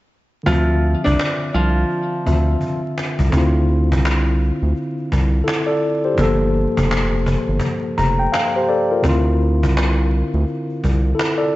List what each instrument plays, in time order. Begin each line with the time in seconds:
0.43 analog synth bass D2, tine electric piano D3 C4, nylon-string guitar F3 F4, cajon bass
0.48 tine electric piano F4 E5
0.69 cajon slap
0.83 cajon slap
1.04 analog synth bass C2, nylon-string guitar D4 D5, cajon bass
1.19 cajon slap
1.41 cajon slap
1.54 analog synth bass C2, nylon-string guitar F3 F4, cajon slap
1.76 cajon slap
1.90 cajon slap
2.12 cajon slap
2.25 analog synth bass D2, tine electric piano D3 C4 F4 E5, cajon bass
2.47 cajon slap
2.60 cajon bass, cajon slap
2.83 cajon slap
2.98 cajon slap
3.19 analog synth bass C2, cajon bass
3.30 analog synth bass D2, tine electric piano D3 C4, cajon bass
3.35 tine electric piano E4 F4
3.55 cajon slap
3.69 cajon slap
3.92 analog synth bass C2, cajon bass
4.05 cajon slap
4.27 cajon slap
4.40 cajon slap
4.61 analog synth bass D2, cajon slap
4.76 cajon slap
4.98 cajon slap
5.12 analog synth bass C2, cajon bass
5.33 cajon slap
5.44 tine electric piano E4 A4, cajon slap
5.66 tine electric piano A4 D5, cajon slap
5.83 cajon slap
6.05 tine electric piano G4 C5, cajon slap
6.14 analog synth bass G1, tine electric piano G2 F3, cajon bass
6.19 tine electric piano A#3 A4
6.41 cajon slap
6.54 cajon slap
6.77 analog synth bass F1, cajon bass
6.91 cajon slap
7.12 cajon slap
7.26 cajon bass
7.47 analog synth bass G1, cajon slap
7.59 cajon bass
7.84 cajon slap
7.98 analog synth bass F1, tine electric piano A#5, cajon bass
8.19 tine electric piano G5, cajon slap
8.32 tine electric piano F5, cajon slap
8.55 tine electric piano G4 C5, cajon slap
8.69 tine electric piano A4 D5, cajon slap
8.91 tine electric piano F4 A#4, cajon slap
9.02 analog synth bass D2, tine electric piano D3 C4, cajon bass
9.06 tine electric piano E4 F4
9.27 cajon slap
9.40 cajon slap
9.63 analog synth bass C2, cajon bass
9.77 cajon slap
9.98 cajon slap
10.12 cajon slap
10.33 analog synth bass D2, cajon slap
10.47 cajon slap
10.69 cajon slap
10.84 analog synth bass C2, cajon bass
11.04 cajon slap
11.15 tine electric piano E4 A4
11.19 cajon slap
11.38 tine electric piano A4 D5, cajon slap